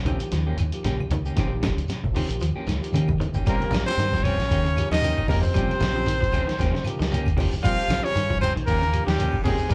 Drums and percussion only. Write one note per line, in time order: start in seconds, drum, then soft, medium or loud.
0.05 closed hi-hat soft
0.05 high conga medium
0.05 low conga medium
0.05 claves medium
0.05 shekere soft
0.20 closed hi-hat soft
0.20 shekere medium
0.32 snare soft
0.32 closed hi-hat medium
0.32 high conga soft
0.32 shekere medium
0.58 closed hi-hat soft
0.58 low conga medium
0.58 claves medium
0.58 shekere medium
0.72 closed hi-hat soft
0.72 shekere soft
0.84 snare soft
0.84 closed hi-hat medium
0.84 high conga medium
0.84 shekere medium
1.00 high conga medium
1.00 claves medium
1.11 closed hi-hat soft
1.11 high conga loud
1.11 low conga medium
1.11 shekere soft
1.26 shekere medium
1.37 kick medium
1.37 snare soft
1.37 closed hi-hat medium
1.37 claves medium
1.37 shekere medium
1.63 kick medium
1.63 snare medium
1.63 closed hi-hat medium
1.63 high conga medium
1.63 low conga medium
1.63 claves medium
1.78 closed hi-hat soft
1.78 shekere soft
1.88 snare soft
1.88 closed hi-hat medium
1.88 high conga soft
1.88 shekere medium
2.04 kick medium
2.04 high conga medium
2.14 open hi-hat medium
2.14 high conga medium
2.14 low conga medium
2.14 claves medium
2.14 shekere soft
2.28 closed hi-hat medium
2.28 shekere medium
2.40 closed hi-hat medium
2.40 high conga soft
2.40 shekere medium
2.67 snare soft
2.67 closed hi-hat medium
2.67 low conga medium
2.67 claves medium
2.67 shekere medium
2.83 closed hi-hat soft
2.83 shekere soft
2.93 closed hi-hat medium
2.93 high conga medium
2.93 shekere medium
3.08 kick medium
3.08 high conga loud
3.08 claves medium
3.20 closed hi-hat soft
3.20 low conga medium
3.20 shekere soft
3.34 kick medium
3.34 low conga medium
3.34 shekere medium
3.46 kick medium
3.46 closed hi-hat medium
3.46 claves medium
3.46 shekere medium
3.60 closed hi-hat soft
3.60 high conga medium
3.71 snare medium
3.71 closed hi-hat medium
3.71 high conga loud
3.71 claves medium
3.71 shekere medium
3.87 snare soft
3.87 closed hi-hat soft
3.87 shekere soft
3.97 snare soft
3.97 closed hi-hat medium
3.97 shekere medium
4.12 kick medium
4.12 snare soft
4.12 high conga medium
4.24 closed hi-hat soft
4.24 high conga medium
4.24 low conga medium
4.24 claves medium
4.24 shekere soft
4.40 snare soft
4.40 closed hi-hat soft
4.51 kick medium
4.51 closed hi-hat medium
4.51 shekere medium
4.66 closed hi-hat soft
4.77 closed hi-hat medium
4.77 claves medium
4.77 shekere medium
4.91 snare medium
4.91 closed hi-hat soft
4.91 shekere soft
5.02 closed hi-hat medium
5.02 high conga medium
5.02 shekere medium
5.18 kick medium
5.18 claves medium
5.28 kick medium
5.28 open hi-hat medium
5.28 high conga loud
5.28 low conga medium
5.28 shekere soft
5.42 low conga medium
5.42 shekere medium
5.54 kick medium
5.54 closed hi-hat medium
5.54 claves medium
5.54 shekere medium
5.68 closed hi-hat soft
5.68 high conga medium
5.80 snare medium
5.80 closed hi-hat medium
5.80 high conga medium
5.80 claves medium
5.80 shekere medium
5.94 shekere soft
6.06 closed hi-hat medium
6.06 shekere medium
6.22 kick medium
6.22 closed hi-hat soft
6.31 closed hi-hat medium
6.31 high conga medium
6.31 low conga medium
6.31 claves medium
6.31 shekere soft
6.49 snare soft
6.49 closed hi-hat soft
6.58 kick medium
6.58 snare soft
6.58 closed hi-hat medium
6.58 shekere medium
6.75 snare soft
6.84 closed hi-hat medium
6.84 claves medium
6.84 shekere medium
6.99 snare medium
6.99 closed hi-hat soft
6.99 shekere soft
7.12 closed hi-hat medium
7.12 high conga medium
7.12 shekere loud
7.26 kick medium
7.26 closed hi-hat soft
7.26 claves medium
7.37 kick medium
7.37 open hi-hat medium
7.37 high conga loud
7.37 low conga medium
7.37 shekere soft
7.52 low conga medium
7.52 shekere medium
7.63 kick loud
7.63 closed hi-hat medium
7.63 claves medium
7.63 shekere medium
7.80 closed hi-hat soft
7.89 snare medium
7.89 closed hi-hat medium
7.89 high conga medium
7.89 claves medium
7.89 shekere medium
8.03 closed hi-hat soft
8.03 shekere soft
8.15 closed hi-hat medium
8.15 shekere medium
8.30 kick medium
8.30 high conga medium
8.41 closed hi-hat medium
8.41 high conga medium
8.41 low conga medium
8.41 claves medium
8.41 shekere soft
8.57 closed hi-hat soft
8.67 kick medium
8.67 closed hi-hat medium
8.67 shekere medium
8.83 closed hi-hat soft
8.93 closed hi-hat medium
8.93 claves medium
8.93 shekere medium
9.08 snare medium
9.08 closed hi-hat soft
9.08 shekere soft
9.18 closed hi-hat medium
9.18 high conga medium
9.18 shekere medium
9.33 kick medium
9.33 claves medium
9.45 kick medium
9.45 open hi-hat medium
9.45 high conga medium
9.45 low conga medium
9.45 shekere soft
9.58 low conga medium
9.58 shekere medium
9.69 kick loud
9.69 closed hi-hat medium
9.69 claves medium
9.69 shekere medium